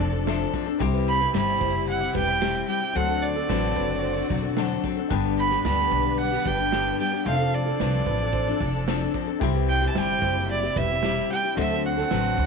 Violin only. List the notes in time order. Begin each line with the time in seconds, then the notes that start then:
Already playing: D5
1.08 B5
1.36 B5
1.90 F#5
2.17 G5
2.69 G5
2.96 F#5
3.22 D5
5.38 B5
5.66 B5
6.20 F#5
6.47 G5
7.00 G5
7.27 F5
7.55 D5
9.69 G5
9.89 A5
9.97 G5
10.51 D5
10.77 E5
11.32 G5
11.60 E5
11.86 F#5